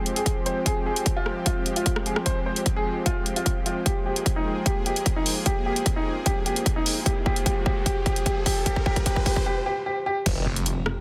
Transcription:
Already playing: F3 G#3 C4 F4 G4 C5 G5
0.06 closed hi-hat
0.16 G#4, closed hi-hat
0.26 kick, closed hi-hat
0.46 C5, closed hi-hat
0.66 G#4, kick, closed hi-hat
0.86 G#4
0.96 closed hi-hat
1.06 kick, closed hi-hat
1.17 F4
1.26 cross-stick
1.46 F4, kick, closed hi-hat
1.66 closed hi-hat
1.76 F4, closed hi-hat
1.86 kick, closed hi-hat
1.96 cross-stick
2.06 G#4, closed hi-hat
2.16 cross-stick
2.26 C5, kick, closed hi-hat
2.46 C5
2.56 closed hi-hat
2.66 kick, closed hi-hat
2.76 G#4
3.06 F4, kick, closed hi-hat
3.26 closed hi-hat
3.36 F4, closed hi-hat
3.46 kick, closed hi-hat
3.66 F4, closed hi-hat
3.86 A#3 G4 G#4, kick, closed hi-hat, riser
4.06 G4
4.16 closed hi-hat
4.26 kick, closed hi-hat
4.36 D#4
4.66 G4, kick, closed hi-hat
4.86 G4, closed hi-hat
4.96 closed hi-hat
5.06 kick, closed hi-hat
5.16 D#4
5.26 open hi-hat
5.46 G4, kick, closed hi-hat
5.66 G4
5.76 closed hi-hat
5.86 kick, closed hi-hat
5.96 D#4
6.26 G4, kick, closed hi-hat
6.46 G4, closed hi-hat
6.56 closed hi-hat
6.66 kick, closed hi-hat
6.76 D#4
6.86 open hi-hat
7.06 G4, kick, closed hi-hat
7.26 G4, kick
7.36 closed hi-hat
7.46 G4, kick, closed hi-hat
7.66 G4, kick
7.86 G4, kick, closed hi-hat
8.06 G4, kick, closed hi-hat
8.16 closed hi-hat
8.26 G4, kick, closed hi-hat
8.46 G4, kick, open hi-hat
8.66 G4, kick, closed hi-hat
8.76 kick
8.86 G4, kick
8.96 kick, closed hi-hat
9.06 G4, kick, closed hi-hat
9.16 kick
9.26 G4, kick, open hi-hat
9.36 kick
9.46 G4
9.66 G4
9.86 G4
10.06 G4
10.26 F1 F3 G#3 C4 F4 G4, kick, closed hi-hat, crash, impact
10.46 F1
10.56 closed hi-hat
10.66 closed hi-hat
10.86 cross-stick

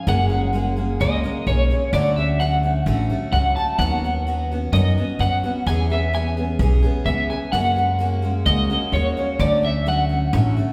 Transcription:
0.07 F#1 F#2 C#3 G#3 A#3 C#4 G#4 F#5
0.29 G#3 A#3 C#4 G#4
0.53 G#3 A#3 C#4 G#4
0.76 G#3 A#3 C#4 G#4
1.00 C#2 F#2 C#3 G#3 A#3 C#4 G#4 D#5
1.24 G#3 A#3 C#4 G#4
1.47 B1 G#3 A#3 C#4 G#4 C#5
1.70 G#3 A#3 C#4 G#4
1.93 D2 D3 F#3 A3 C#4 F#4 D5
2.16 A3 C#4 F#4 E5
2.40 F#3 A3 C#4 F#4 F#5
2.63 A3 C#4 F#4
2.86 A1 D3 F#3 A3 C#4 F#4
3.10 A3 C#4 F#4
3.32 C#2 F#3 A3 C#4 F#4 F#5
3.56 A3 C#4 F#4 A5
3.79 D#2 D#3 F#3 B3 C#4 F#4 F#5
4.04 B3 C#4 F#4
4.27 F#3 B3 C#4 F#4
4.52 B3 C#4 F#4
4.73 F#2 D#3 F#3 B3 C#4 F#4 D#5
4.98 B3 C#4 F#4
5.19 F#2 F#3 B3 C#4 F#4 F#5
5.44 B3 C#4 F#4
5.66 E2 E3 B3 C#4 G#4 G#5
5.90 B3 C#4 G#4 E5
6.13 E3 B3 C#4 G#4 G#5
6.37 B3 C#4 G#4
6.59 B1 E3 B3 C#4 G#4
6.83 B3 C#4 G#4
7.06 C#2 E3 B3 C#4 G#4 E5
7.30 B3 C#4 G#4 G#5
7.52 F#2 C#3 G#3 A#3 C#4 F#4 F#5
7.76 G#3 A#3 C#4 F#4
7.99 G#3 A#3 C#4 F#4
8.22 G#3 A#3 C#4 F#4
8.46 C#2 F#2 C#3 G#3 A#3 C#4 F#4 D#5
8.70 G#3 A#3 C#4 F#4
8.92 D#2 G#3 A#3 C#4 F#4 C#5
9.17 G#3 A#3 C#4 F#4
9.39 D2 D3 F#3 A3 C#4 F#4 D5
9.63 A3 C#4 F#4 E5
9.86 F#3 A3 C#4 F#4 F#5
10.09 A3 C#4 F#4
10.33 A1 D3 F#3 A3 C#4 F#4
10.57 A3 C#4 F#4

